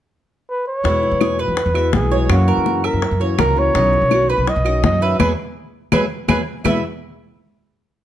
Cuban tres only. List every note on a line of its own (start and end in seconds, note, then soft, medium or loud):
0.85 1.20 E4 medium
1.21 1.39 G#4 medium
1.39 1.74 B4 medium
1.75 2.10 E5 medium
2.11 2.47 C#5 medium
2.48 2.83 A#4 medium
2.84 3.19 E5 medium
3.21 3.38 C#5 medium
3.39 3.74 A#4 medium
3.75 4.10 D#4 medium
4.12 4.29 F#4 medium
4.30 4.65 B4 medium
4.66 5.01 D#5 medium
5.02 5.19 B4 medium
5.20 5.32 G#4 medium
5.20 5.32 B4 medium
5.20 5.32 E5 medium
5.92 6.04 G#4 medium
5.92 6.04 B4 medium
5.92 6.04 E5 medium
6.28 6.40 G#4 medium
6.28 6.40 B4 medium
6.28 6.40 E5 medium
6.65 6.82 E4 medium
6.65 6.82 B4 medium
6.65 6.82 E5 medium